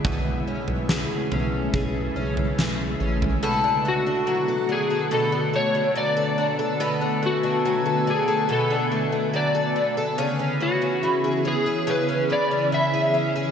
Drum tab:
SD |----o-------o---|----------------|----------------|----------------|
FT |o--o--o----o---o|----------------|----------------|----------------|
BD |o-------o-------|----------------|----------------|----------------|